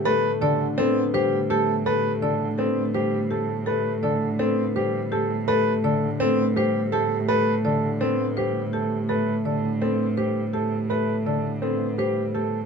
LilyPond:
<<
  \new Staff \with { instrumentName = "Grand piano" } { \time 5/4 \key a \minor \tempo 4 = 166 b'8 r8 a'8 r8 c'8 r8 g'8 r8 a'8 r8 | b'8 r8 a'8 r8 c'8 r8 g'8 r8 a'8 r8 | b'8 r8 a'8 r8 c'8 r8 g'8 r8 a'8 r8 | b'8 r8 a'8 r8 c'8 r8 g'8 r8 a'8 r8 |
b'8 r8 a'8 r8 c'8 r8 g'8 r8 a'8 r8 | b'8 r8 a'8 r8 c'8 r8 g'8 r8 a'8 r8 | b'8 r8 a'8 r8 c'8 r8 g'8 r8 a'8 r8 | }
  \new Staff \with { instrumentName = "Marimba" } { \time 5/4 \key a \minor a'8 r8 d''8 r8 a'8 r8 c''8 r8 g'8 r8 | a'8 r8 d''8 r8 a'8 r8 c''8 r8 g'8 r8 | a'8 r8 d''8 r8 a'8 r8 c''8 r8 g'8 r8 | a'8 r8 d''8 r8 a'8 r8 c''8 r8 g'8 r8 |
a'8 r8 d''8 r8 a'8 r8 c''8 r8 g'8 r8 | a'8 r8 d''8 r8 a'8 r8 c''8 r8 g'8 r8 | a'8 r8 d''8 r8 a'8 r8 c''8 r8 g'8 r8 | }
  \new Staff \with { instrumentName = "Harp" } { \time 5/4 \key a \minor <d g a b>4 d4 b4 g4 a4 | a4 d4 b4 g4 a4 | a4 d4 b4 g4 a4 | a4 d4 b4 g4 a4 |
a4 d4 b4 g4 a4 | a4 d4 b4 g4 a4 | a4 d4 b4 g4 a4 | }
  \new Staff \with { instrumentName = "Cello" } { \clef bass \time 5/4 \key a \minor a,1~ a,4~ | a,1~ a,4~ | a,1~ a,4~ | a,1~ a,4~ |
a,1~ a,4~ | a,1~ a,4~ | a,1~ a,4 | }
>>